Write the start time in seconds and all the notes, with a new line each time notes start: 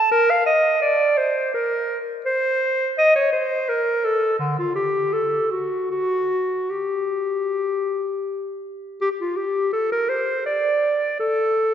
0.11 A#4
0.30 F5
0.46 D#5
0.81 D5
1.17 C5
1.54 A#4
2.25 C5
2.98 D#5
3.15 C#5
3.32 C5
3.69 A#4
4.05 A4
4.39 D3
4.58 F4
4.75 G4
5.13 A4
5.51 F#4
5.91 F#4
6.70 G4
9.01 G4
9.21 F4
9.37 G4
9.73 A4
9.92 A#4
10.09 C5
10.46 D5
11.20 A4